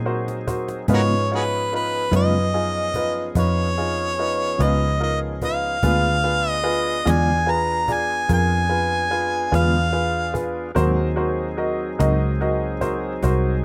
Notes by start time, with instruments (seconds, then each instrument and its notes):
Already playing: fingered electric bass A#2, tonewheel organ F#3 C4 D#4 G#4
0.06 grand piano F#4 A#4 C5, cajon slap
0.28 cajon slap
0.47 grand piano F#4 A#4 C5, cajon bass
0.68 cajon slap
0.88 fingered electric bass G#2, clean electric guitar C#3 G#3 B3 F4, tonewheel organ F3 B3 C#4 G#4, grand piano D#4 F4 B4, cajon bass
0.94 harmonica F#4 A#4 C#5
1.30 grand piano D#4 F4 C#5, cajon slap
1.35 harmonica F#4 G#4 B4
1.71 grand piano D#4 F4 B4, cajon slap
1.75 harmonica B4
2.11 fingered electric bass F#2, clean electric guitar C#3 G#3 B3 F4, grand piano D#4 F4 B4, cajon slap
2.16 harmonica D#5
2.54 grand piano D#4 F4 G#4
2.94 grand piano D#4 F4 B4, cajon bass
3.35 fingered electric bass F2, grand piano D#4 F4 B4, cajon bass
3.39 harmonica C#5
3.77 grand piano D#4 F4 G#4, cajon slap
4.19 grand piano D#4 F4 B4, cajon slap
4.58 fingered electric bass C#2, clean electric guitar C#3 G#3 B3 F4, grand piano D#4 F4 B4, cajon slap
4.62 harmonica D#5
5.00 grand piano D#4 F4 A#4, harmonica D#5, cajon slap
5.42 grand piano D#4 F4 B4, cajon bass
5.46 harmonica F5
5.83 fingered electric bass D2, clean electric guitar D3 G#3 B3 F4, tonewheel organ B3 D4 F4 G#4, grand piano F4 G#4 B4, cajon bass
6.24 grand piano F4 G#4 B4
6.51 harmonica D#5
6.63 grand piano F4 G#4 B4
7.05 fingered electric bass E2, clean electric guitar D3 G#3 B3 F4, grand piano F4 G#4 D5, cajon slap
7.10 harmonica G#5
7.46 grand piano F4 G#4 B4
7.50 harmonica A#5
7.88 grand piano F4 G#4 D5, cajon bass
7.92 harmonica G#5
8.29 fingered electric bass F2, grand piano F4 G#4 A#4, cajon bass
8.33 harmonica G#5
8.69 grand piano F4 G#4 B4
9.11 grand piano F4 G#4 B4, cajon slap
9.52 fingered electric bass E2, clean electric guitar D3 G#3 B3 F4, grand piano F4 G#4 B4, harmonica F5, cajon slap
9.93 grand piano F4 G#4 B4
10.34 grand piano F4 G#4 B4, cajon bass
10.75 fingered electric bass D#2, clean electric guitar G#2 F#3 C4 D#4, tonewheel organ F#3 C4 D#4 G#4, grand piano F#4 A#4 C5, cajon bass
11.16 grand piano F#4 A#4 C5, cajon slap
11.57 grand piano F#4 A#4 D#5, cajon slap
11.99 fingered electric bass C#2, clean electric guitar G#2 F#3 C4 D#4, grand piano F#4 A#4 D#5, cajon slap
12.41 grand piano F#4 A#4 D#5, cajon slap
12.81 grand piano F#4 A#4 C5, cajon bass
13.22 fingered electric bass C2, grand piano F#4 A#4 C5, cajon bass